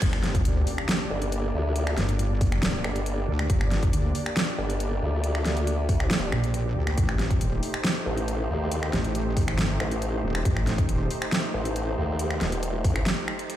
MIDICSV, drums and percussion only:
0, 0, Header, 1, 2, 480
1, 0, Start_track
1, 0, Key_signature, -2, "minor"
1, 0, Tempo, 434783
1, 21, Time_signature, 4, 2, 24, 8
1, 14976, End_track
2, 0, Start_track
2, 0, Title_t, "Drums"
2, 20, Note_on_c, 9, 36, 117
2, 20, Note_on_c, 9, 42, 84
2, 20, Note_on_c, 9, 49, 113
2, 130, Note_off_c, 9, 36, 0
2, 130, Note_off_c, 9, 42, 0
2, 130, Note_off_c, 9, 49, 0
2, 144, Note_on_c, 9, 26, 63
2, 254, Note_off_c, 9, 26, 0
2, 259, Note_on_c, 9, 38, 61
2, 259, Note_on_c, 9, 42, 55
2, 370, Note_off_c, 9, 38, 0
2, 370, Note_off_c, 9, 42, 0
2, 384, Note_on_c, 9, 36, 103
2, 384, Note_on_c, 9, 42, 55
2, 494, Note_off_c, 9, 36, 0
2, 494, Note_off_c, 9, 42, 0
2, 499, Note_on_c, 9, 42, 85
2, 609, Note_off_c, 9, 42, 0
2, 739, Note_on_c, 9, 46, 90
2, 849, Note_off_c, 9, 46, 0
2, 863, Note_on_c, 9, 26, 81
2, 974, Note_off_c, 9, 26, 0
2, 979, Note_on_c, 9, 38, 118
2, 979, Note_on_c, 9, 42, 84
2, 1090, Note_off_c, 9, 38, 0
2, 1090, Note_off_c, 9, 42, 0
2, 1344, Note_on_c, 9, 42, 56
2, 1455, Note_off_c, 9, 42, 0
2, 1460, Note_on_c, 9, 42, 78
2, 1570, Note_off_c, 9, 42, 0
2, 1940, Note_on_c, 9, 42, 83
2, 2050, Note_off_c, 9, 42, 0
2, 2064, Note_on_c, 9, 26, 62
2, 2175, Note_off_c, 9, 26, 0
2, 2180, Note_on_c, 9, 38, 65
2, 2180, Note_on_c, 9, 42, 55
2, 2291, Note_off_c, 9, 38, 0
2, 2291, Note_off_c, 9, 42, 0
2, 2304, Note_on_c, 9, 42, 56
2, 2414, Note_off_c, 9, 42, 0
2, 2420, Note_on_c, 9, 42, 81
2, 2531, Note_off_c, 9, 42, 0
2, 2660, Note_on_c, 9, 36, 110
2, 2660, Note_on_c, 9, 46, 88
2, 2771, Note_off_c, 9, 36, 0
2, 2771, Note_off_c, 9, 46, 0
2, 2784, Note_on_c, 9, 26, 76
2, 2895, Note_off_c, 9, 26, 0
2, 2900, Note_on_c, 9, 38, 122
2, 2900, Note_on_c, 9, 42, 84
2, 3010, Note_off_c, 9, 38, 0
2, 3010, Note_off_c, 9, 42, 0
2, 3140, Note_on_c, 9, 26, 82
2, 3251, Note_off_c, 9, 26, 0
2, 3265, Note_on_c, 9, 42, 57
2, 3375, Note_off_c, 9, 42, 0
2, 3381, Note_on_c, 9, 42, 84
2, 3491, Note_off_c, 9, 42, 0
2, 3745, Note_on_c, 9, 26, 83
2, 3855, Note_off_c, 9, 26, 0
2, 3861, Note_on_c, 9, 36, 121
2, 3861, Note_on_c, 9, 42, 83
2, 3971, Note_off_c, 9, 36, 0
2, 3971, Note_off_c, 9, 42, 0
2, 3984, Note_on_c, 9, 26, 60
2, 4095, Note_off_c, 9, 26, 0
2, 4100, Note_on_c, 9, 38, 62
2, 4100, Note_on_c, 9, 42, 52
2, 4210, Note_off_c, 9, 38, 0
2, 4210, Note_off_c, 9, 42, 0
2, 4224, Note_on_c, 9, 42, 55
2, 4225, Note_on_c, 9, 36, 114
2, 4335, Note_off_c, 9, 36, 0
2, 4335, Note_off_c, 9, 42, 0
2, 4341, Note_on_c, 9, 42, 81
2, 4451, Note_off_c, 9, 42, 0
2, 4581, Note_on_c, 9, 46, 88
2, 4691, Note_off_c, 9, 46, 0
2, 4705, Note_on_c, 9, 26, 73
2, 4816, Note_off_c, 9, 26, 0
2, 4821, Note_on_c, 9, 38, 124
2, 4821, Note_on_c, 9, 42, 82
2, 4931, Note_off_c, 9, 38, 0
2, 4931, Note_off_c, 9, 42, 0
2, 5186, Note_on_c, 9, 42, 55
2, 5296, Note_off_c, 9, 42, 0
2, 5302, Note_on_c, 9, 42, 80
2, 5412, Note_off_c, 9, 42, 0
2, 5781, Note_on_c, 9, 42, 83
2, 5892, Note_off_c, 9, 42, 0
2, 5906, Note_on_c, 9, 26, 59
2, 6016, Note_off_c, 9, 26, 0
2, 6022, Note_on_c, 9, 38, 64
2, 6022, Note_on_c, 9, 42, 52
2, 6132, Note_off_c, 9, 38, 0
2, 6132, Note_off_c, 9, 42, 0
2, 6146, Note_on_c, 9, 42, 52
2, 6256, Note_off_c, 9, 42, 0
2, 6262, Note_on_c, 9, 42, 78
2, 6373, Note_off_c, 9, 42, 0
2, 6501, Note_on_c, 9, 36, 104
2, 6502, Note_on_c, 9, 46, 84
2, 6612, Note_off_c, 9, 36, 0
2, 6612, Note_off_c, 9, 46, 0
2, 6626, Note_on_c, 9, 26, 79
2, 6737, Note_off_c, 9, 26, 0
2, 6742, Note_on_c, 9, 38, 121
2, 6742, Note_on_c, 9, 42, 76
2, 6852, Note_off_c, 9, 38, 0
2, 6852, Note_off_c, 9, 42, 0
2, 6981, Note_on_c, 9, 26, 80
2, 7092, Note_off_c, 9, 26, 0
2, 7106, Note_on_c, 9, 42, 53
2, 7216, Note_off_c, 9, 42, 0
2, 7221, Note_on_c, 9, 42, 76
2, 7331, Note_off_c, 9, 42, 0
2, 7585, Note_on_c, 9, 26, 81
2, 7695, Note_off_c, 9, 26, 0
2, 7701, Note_on_c, 9, 36, 115
2, 7701, Note_on_c, 9, 42, 76
2, 7811, Note_off_c, 9, 42, 0
2, 7812, Note_off_c, 9, 36, 0
2, 7825, Note_on_c, 9, 26, 63
2, 7936, Note_off_c, 9, 26, 0
2, 7941, Note_on_c, 9, 38, 59
2, 7941, Note_on_c, 9, 42, 49
2, 8051, Note_off_c, 9, 38, 0
2, 8051, Note_off_c, 9, 42, 0
2, 8065, Note_on_c, 9, 36, 100
2, 8065, Note_on_c, 9, 42, 50
2, 8175, Note_off_c, 9, 42, 0
2, 8176, Note_off_c, 9, 36, 0
2, 8181, Note_on_c, 9, 42, 77
2, 8291, Note_off_c, 9, 42, 0
2, 8421, Note_on_c, 9, 46, 84
2, 8531, Note_off_c, 9, 46, 0
2, 8544, Note_on_c, 9, 26, 81
2, 8655, Note_off_c, 9, 26, 0
2, 8660, Note_on_c, 9, 38, 117
2, 8660, Note_on_c, 9, 42, 78
2, 8771, Note_off_c, 9, 38, 0
2, 8771, Note_off_c, 9, 42, 0
2, 9025, Note_on_c, 9, 42, 50
2, 9135, Note_off_c, 9, 42, 0
2, 9141, Note_on_c, 9, 42, 76
2, 9252, Note_off_c, 9, 42, 0
2, 9622, Note_on_c, 9, 42, 81
2, 9732, Note_off_c, 9, 42, 0
2, 9746, Note_on_c, 9, 26, 66
2, 9856, Note_off_c, 9, 26, 0
2, 9862, Note_on_c, 9, 38, 58
2, 9862, Note_on_c, 9, 42, 50
2, 9972, Note_off_c, 9, 38, 0
2, 9972, Note_off_c, 9, 42, 0
2, 9986, Note_on_c, 9, 42, 50
2, 10096, Note_off_c, 9, 42, 0
2, 10101, Note_on_c, 9, 42, 76
2, 10212, Note_off_c, 9, 42, 0
2, 10341, Note_on_c, 9, 36, 105
2, 10341, Note_on_c, 9, 46, 89
2, 10451, Note_off_c, 9, 36, 0
2, 10451, Note_off_c, 9, 46, 0
2, 10466, Note_on_c, 9, 26, 84
2, 10576, Note_off_c, 9, 26, 0
2, 10581, Note_on_c, 9, 38, 111
2, 10581, Note_on_c, 9, 42, 73
2, 10692, Note_off_c, 9, 38, 0
2, 10692, Note_off_c, 9, 42, 0
2, 10821, Note_on_c, 9, 26, 92
2, 10931, Note_off_c, 9, 26, 0
2, 10946, Note_on_c, 9, 42, 51
2, 11056, Note_off_c, 9, 42, 0
2, 11061, Note_on_c, 9, 42, 73
2, 11171, Note_off_c, 9, 42, 0
2, 11425, Note_on_c, 9, 26, 85
2, 11536, Note_off_c, 9, 26, 0
2, 11541, Note_on_c, 9, 36, 113
2, 11541, Note_on_c, 9, 42, 82
2, 11651, Note_off_c, 9, 36, 0
2, 11651, Note_off_c, 9, 42, 0
2, 11665, Note_on_c, 9, 26, 67
2, 11775, Note_off_c, 9, 26, 0
2, 11781, Note_on_c, 9, 38, 55
2, 11781, Note_on_c, 9, 42, 51
2, 11891, Note_off_c, 9, 38, 0
2, 11891, Note_off_c, 9, 42, 0
2, 11905, Note_on_c, 9, 36, 99
2, 11905, Note_on_c, 9, 42, 50
2, 12015, Note_off_c, 9, 36, 0
2, 12015, Note_off_c, 9, 42, 0
2, 12021, Note_on_c, 9, 42, 78
2, 12131, Note_off_c, 9, 42, 0
2, 12260, Note_on_c, 9, 46, 87
2, 12371, Note_off_c, 9, 46, 0
2, 12385, Note_on_c, 9, 26, 85
2, 12495, Note_off_c, 9, 26, 0
2, 12501, Note_on_c, 9, 38, 113
2, 12501, Note_on_c, 9, 42, 77
2, 12611, Note_off_c, 9, 38, 0
2, 12611, Note_off_c, 9, 42, 0
2, 12865, Note_on_c, 9, 42, 55
2, 12976, Note_off_c, 9, 42, 0
2, 12981, Note_on_c, 9, 42, 79
2, 13092, Note_off_c, 9, 42, 0
2, 13461, Note_on_c, 9, 42, 86
2, 13572, Note_off_c, 9, 42, 0
2, 13585, Note_on_c, 9, 26, 65
2, 13695, Note_off_c, 9, 26, 0
2, 13701, Note_on_c, 9, 38, 61
2, 13701, Note_on_c, 9, 42, 53
2, 13811, Note_off_c, 9, 38, 0
2, 13811, Note_off_c, 9, 42, 0
2, 13825, Note_on_c, 9, 42, 51
2, 13935, Note_off_c, 9, 42, 0
2, 13941, Note_on_c, 9, 42, 80
2, 14051, Note_off_c, 9, 42, 0
2, 14180, Note_on_c, 9, 36, 104
2, 14181, Note_on_c, 9, 46, 91
2, 14291, Note_off_c, 9, 36, 0
2, 14291, Note_off_c, 9, 46, 0
2, 14304, Note_on_c, 9, 26, 88
2, 14415, Note_off_c, 9, 26, 0
2, 14420, Note_on_c, 9, 38, 111
2, 14420, Note_on_c, 9, 42, 77
2, 14531, Note_off_c, 9, 38, 0
2, 14531, Note_off_c, 9, 42, 0
2, 14660, Note_on_c, 9, 26, 86
2, 14770, Note_off_c, 9, 26, 0
2, 14785, Note_on_c, 9, 42, 53
2, 14895, Note_off_c, 9, 42, 0
2, 14900, Note_on_c, 9, 42, 79
2, 14976, Note_off_c, 9, 42, 0
2, 14976, End_track
0, 0, End_of_file